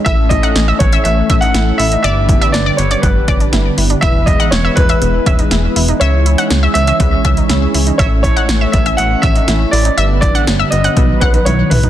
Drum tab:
HH |x-xxx-xxx-xxx-ox|x-xxx-xxx-xxx-ox|x-xxx-xxx-xxx-ox|x-xxx-xxx-xxx-ox|
SD |----o-------o---|----o-------o---|----o-------o---|----o-------o---|
T1 |----------------|----------------|----------------|----------------|
T2 |----------------|----------------|----------------|----------------|
FT |----------------|----------------|----------------|----------------|
BD |o-o---o---o-----|--o-----o-o-----|o-o---o---o-----|--------o-o-----|

HH |x-xxx-xxx-xxx-ox|x-xxx-xxx-xxx-ox|
SD |----o-------o---|----o-----------|
T1 |----------------|------------o---|
T2 |----------------|--------------o-|
FT |----------------|---------------o|
BD |o-o---o---o-----|--o-----o-o-----|